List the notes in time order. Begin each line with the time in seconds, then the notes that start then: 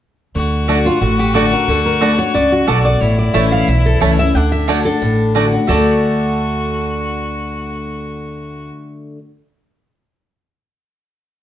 0.35 D2 D3 F#4
0.68 D3 A3 D4 F#4 D5 A5
0.85 D4 F4 F#4
1.01 A1 A2 F#4
1.19 G4
1.34 D3 A3 D4 F#4 A4 D5 A5
1.51 D4 F#4 A#4
1.67 D2 D3 A4
1.86 A#4
2.01 D3 A3 D4 F#4 B4 D5 A5
2.18 D4 F#4 C#5
2.34 C#2 C#3 D5
2.52 F#4
2.67 B1 B2 A3 F#4 A4 D5 A5
2.85 D5
3.00 A1 A2 E4 C#5
3.19 D5
3.34 A1 E3 A3 C#4 E4 C#5 E5 A5
3.52 F5
3.68 B1 E2 E5
3.86 A4
4.01 C#2 E3 A3 C#4 E4 C#5 A5
4.19 C#4 E4 E5
4.34 D2 D3 D4 F#5
4.52 E5
4.68 D3 A3 D4 F#4 C#5 D5 A5
4.85 D4 F#4 A4
5.02 A1 A2
5.35 D3 A3 D4 F#4 D5 A5
5.53 D4 F#4
5.67 D2 D3 A3 D4 F#4 A4 D5 A5